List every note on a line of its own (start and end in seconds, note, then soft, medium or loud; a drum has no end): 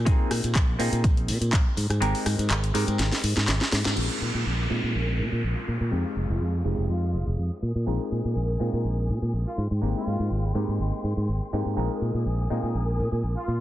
0.05 0.17 A#1 loud
0.05 0.76 A#3 medium
0.05 0.77 C4 medium
0.05 0.77 D#4 medium
0.05 0.77 F4 medium
0.05 0.77 G#4 loud
0.05 kick loud
0.05 closed hi-hat medium
0.31 0.41 A#2 medium
0.31 cross-stick medium
0.31 open hi-hat loud
0.31 tambourine medium
0.44 0.53 A#2 medium
0.44 closed hi-hat medium
0.44 tambourine soft
0.55 0.75 A#1 medium
0.55 kick loud
0.55 cross-stick medium
0.55 clap loud
0.55 closed hi-hat medium
0.79 0.90 A#2 loud
0.79 1.75 A#3 medium
0.79 1.76 C4 medium
0.79 1.76 D#4 medium
0.79 1.76 F4 medium
0.79 1.76 G#4 medium
0.79 open hi-hat loud
0.79 tambourine medium
0.92 1.02 A#2 loud
0.92 closed hi-hat medium
0.92 tambourine soft
1.04 1.30 A#1 medium
1.04 kick loud
1.04 closed hi-hat medium
1.04 tambourine soft
1.17 closed hi-hat soft
1.28 1.39 A#2 medium
1.28 open hi-hat loud
1.28 tambourine medium
1.41 1.50 A#2 loud
1.41 closed hi-hat medium
1.41 tambourine soft
1.53 1.63 A#1 medium
1.53 kick loud
1.53 clap loud
1.53 closed hi-hat medium
1.77 1.88 G#2 medium
1.77 open hi-hat medium
1.77 tambourine medium
1.90 1.99 G#2 loud
1.90 cross-stick medium
1.90 closed hi-hat medium
1.90 tambourine medium
2.00 2.12 G#1 loud
2.00 2.72 G#3 medium
2.00 2.72 C4 medium
2.00 2.72 D#4 medium
2.00 2.72 G4 medium
2.00 2.72 A#4 loud
2.00 closed hi-hat medium
2.00 tambourine soft
2.15 open hi-hat medium
2.26 2.36 G#2 medium
2.26 cross-stick medium
2.26 open hi-hat loud
2.26 tambourine medium
2.39 2.48 G#2 medium
2.39 closed hi-hat medium
2.39 tambourine soft
2.50 2.70 G#1 medium
2.50 cross-stick medium
2.50 clap loud
2.50 closed hi-hat medium
2.64 closed hi-hat soft
2.74 2.85 G#2 loud
2.74 3.94 G#3 medium
2.74 3.94 C4 medium
2.74 3.94 D#4 medium
2.74 3.94 G4 medium
2.74 3.94 A#4 medium
2.74 open hi-hat loud
2.74 tambourine medium
2.88 2.97 G#2 loud
2.88 closed hi-hat medium
2.88 tambourine medium
2.99 3.10 G#1 loud
2.99 snare medium
2.99 closed hi-hat medium
3.12 snare medium
3.12 open hi-hat medium
3.23 3.34 G#2 loud
3.23 open hi-hat loud
3.23 tambourine medium
3.36 3.46 G#2 medium
3.36 snare medium
3.36 closed hi-hat medium
3.36 tambourine medium
3.47 3.59 G#1 medium
3.47 snare medium
3.47 clap loud
3.47 closed hi-hat medium
3.47 tambourine soft
3.61 snare medium
3.72 3.83 G#2 loud
3.72 snare loud
3.72 open hi-hat loud
3.72 tambourine medium
3.85 3.95 G#2 medium
3.85 snare medium
3.85 closed hi-hat medium
3.85 tambourine medium
3.96 4.08 A#1 medium
3.96 4.67 G#3 medium
3.96 4.67 C4 medium
3.96 4.67 D#4 medium
3.96 4.68 F4 medium
3.96 5.90 A#4 medium
3.96 4.68 A#4 medium
3.96 5.90 G#5 medium
3.96 9.54 D#6 medium
3.96 crash medium
3.96 downlifter medium
4.21 4.32 A#2 medium
4.35 4.44 A#2 medium
4.46 4.66 A#1 medium
4.69 4.81 A#2 medium
4.69 5.89 G#3 medium
4.69 5.89 C4 medium
4.69 5.89 D#4 medium
4.69 5.90 F4 medium
4.69 5.90 A#4 medium
4.84 4.92 A#2 medium
4.95 5.20 A#1 medium
5.19 5.29 A#2 medium
5.32 5.41 A#2 medium
5.44 5.54 A#1 medium
5.55 5.77 F4 medium
5.68 5.78 A#2 medium
5.81 5.90 A#2 medium
5.91 6.03 F2 medium
5.91 6.62 G#3 medium
5.91 7.61 G#3 medium
5.91 6.62 C4 medium
5.91 6.62 D#4 medium
5.91 6.63 F4 medium
5.91 6.63 G4 medium
5.91 7.61 F5 medium
6.16 6.27 F1 medium
6.30 6.39 F1 medium
6.30 6.51 F4 medium
6.41 6.61 F2 medium
6.64 6.76 F1 medium
6.64 7.61 G#3 medium
6.64 7.61 C4 medium
6.64 7.61 D#4 medium
6.64 7.62 F4 medium
6.64 7.62 G4 medium
6.78 6.87 F1 medium
6.89 7.15 F2 medium
6.89 7.27 F4 medium
7.14 7.24 F1 medium
7.27 7.36 F1 medium
7.38 7.49 F2 medium
7.62 7.73 A#2 medium
7.62 9.56 A#4 medium
7.62 9.56 G#5 medium
7.75 7.85 A#2 medium
7.86 7.98 A#1 medium
7.86 8.57 G#3 medium
7.86 8.57 C4 medium
7.86 8.58 D#4 medium
7.86 8.58 F4 medium
7.86 8.58 A#4 medium
8.12 8.22 A#2 medium
8.25 8.34 A#2 medium
8.36 8.56 A#1 medium
8.60 8.71 A#2 loud
8.60 9.56 G#3 medium
8.60 9.56 C4 medium
8.60 9.56 D#4 medium
8.60 9.57 F4 medium
8.60 9.57 A#4 medium
8.73 8.82 A#2 medium
8.85 9.11 A#1 medium
9.09 9.20 A#2 medium
9.22 9.31 A#2 medium
9.33 9.44 A#1 medium
9.47 9.63 F4 medium
9.58 9.68 G#2 medium
9.58 11.75 G#3 medium
9.58 11.75 G5 medium
9.58 11.75 C6 medium
9.71 9.80 G#2 medium
9.81 9.93 G#1 loud
9.81 10.52 G#3 medium
9.81 10.52 A#3 medium
9.81 10.53 C4 medium
9.81 10.53 D#4 medium
9.81 10.53 G4 loud
9.96 10.44 F4 medium
10.07 10.17 G#2 medium
10.20 10.29 G#2 medium
10.31 10.51 G#1 medium
10.55 10.66 G#2 loud
10.55 11.50 G#3 medium
10.55 11.51 A#3 medium
10.55 11.51 C4 medium
10.55 11.51 D#4 medium
10.55 11.51 G4 medium
10.69 10.78 G#2 medium
10.80 10.90 G#1 medium
11.04 11.15 G#2 medium
11.17 11.26 G#2 medium
11.29 11.39 G#1 medium
11.53 11.63 G#2 medium
11.53 11.75 G#3 medium
11.53 11.75 A#3 medium
11.53 11.75 C4 medium
11.53 11.75 D#4 medium
11.53 11.75 G4 medium
11.66 11.75 G#2 medium
11.77 11.88 A#1 medium
11.77 12.47 G#3 medium
11.77 12.48 C4 medium
11.77 12.48 D#4 medium
11.77 12.48 F4 medium
11.77 12.48 A#4 medium
11.77 13.60 A#4 medium
11.77 13.60 G#5 medium
11.77 13.60 D#6 medium
11.77 tambourine soft
12.01 12.12 A#2 medium
12.01 tambourine medium
12.14 12.24 A#2 medium
12.14 tambourine soft
12.26 12.46 A#1 medium
12.26 tambourine soft
12.50 12.61 A#2 medium
12.50 13.60 G#3 medium
12.50 13.60 C4 medium
12.50 13.60 D#4 medium
12.50 13.60 F4 medium
12.50 13.60 A#4 medium
12.50 tambourine medium
12.63 12.73 A#2 medium
12.63 tambourine soft
12.75 13.01 A#1 medium
12.75 tambourine soft
12.99 13.10 A#2 medium
12.99 tambourine medium
13.11 13.21 A#2 medium
13.11 tambourine medium
13.24 13.34 A#1 medium
13.24 tambourine soft
13.36 13.58 F4 medium
13.47 13.58 A#2 medium
13.47 tambourine medium